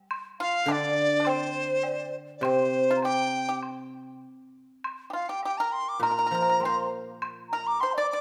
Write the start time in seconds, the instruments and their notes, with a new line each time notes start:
0.11 high woodblock
0.40 pipa F4, xiao F5, dizi F5
0.66 guzheng D3, pipa D4, xiao D5, low woodblock
0.72 dizi D5
1.13 xiao D5
1.20 pipa D4
1.25 pipa C4, xiao C5, high woodblock
1.29 dizi C5
1.83 xiao D5, low woodblock
2.38 guzheng C3, dizi D5
2.43 pipa C4, xiao C5, dizi C5, high woodblock
2.91 pipa F4
2.96 xiao A#5
3.02 pipa G4, dizi G5, xiao G5, high woodblock
3.49 pipa G4
3.63 high woodblock
4.84 high woodblock
5.10 pipa F4 G4, xiao F5
5.14 dizi F5
5.28 pipa G4, xiao G5, dizi G5
5.42 pipa G4, xiao G5, dizi G5, low woodblock
5.58 pipa A#4, dizi A#5
5.72 dizi C6
5.89 dizi D6
6.00 guzheng A#2, pipa A#4, xiao A#5, high woodblock
6.05 dizi A#5
6.11 pipa A#4
6.19 pipa A#4
6.27 pipa A#4
6.31 guzheng F3, pipa A#4
6.42 pipa A#4
6.49 pipa A#4
6.60 guzheng A#3, xiao C6, low woodblock
6.65 pipa C5
7.22 high woodblock
7.49 xiao A#5
7.53 pipa A#4, dizi A#5
7.67 dizi D6
7.80 pipa C5, xiao C6, dizi C6, low woodblock
7.92 xiao D5
7.97 pipa D5, dizi D6
8.07 xiao D5, dizi D6
8.13 pipa D5